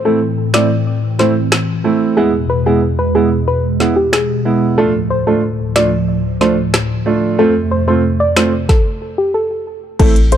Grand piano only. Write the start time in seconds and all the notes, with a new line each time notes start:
0.05 A3 C4 E4
0.54 A3 C4 E4
1.19 A3 C4 E4
1.84 A3 C4 E4
2.17 G#3 B3 E4
2.66 G#3 B3 E4
3.15 G#3 B3 E4
3.80 G#3 B3 E4
4.45 G#3 B3 E4
4.78 A3 D4 F4
5.27 A3 D4 F4
5.76 A3 D4 F4
6.41 A3 D4 F4
7.06 A3 D4 F4
7.39 A3 C4 F4
7.88 A3 C4 F4
8.36 A3 C4 F4
9.99 A3 C4 E4